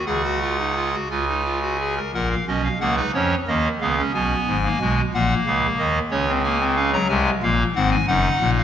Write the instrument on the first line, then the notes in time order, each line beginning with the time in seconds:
pipe organ
0.06 C#2 C#3 G#4 F#5
0.24 F#4
0.41 F4
0.59 D#4
0.76 F4
0.94 F#4
1.10 C#2 C#3 F4 G#5
1.28 D#4
1.45 F4
1.62 F#4
1.80 G#4
1.97 A#4
2.14 A#1 A#2 A#4 F#5
2.30 F5
2.47 B1 B2 C#4 D#5
2.63 F5
2.80 C#2 C#3 A#3 F#5
2.97 D#4 B4
3.14 F2 F3 C#4 C#5
3.48 D#2 D#3 A#3 D#5
3.81 C#2 C#3 B3 F5
3.98 C#4
4.14 B1 B2 B3 G#5
4.47 G#1 G#2
4.64 A#3
4.80 B1 B2 G#3
5.14 A#1 A#2 A#3 F#5
5.46 C#2 C#3 F5
5.79 D#2 D#3 D#5
6.11 C#2 C#3 C#4 C#5
6.28 C4
6.44 A#3 G#5
6.60 C4
6.76 C#4 F5
6.93 F#3 A#5
7.09 C2 C3 G#3 G#5
7.42 A#1 A#2 A#3 F5
7.75 G#1 G#2 C4 F#5
7.91 G#5
8.07 F#1 F#2 D#4 F#5
8.41 A#1 A#2
8.57 F5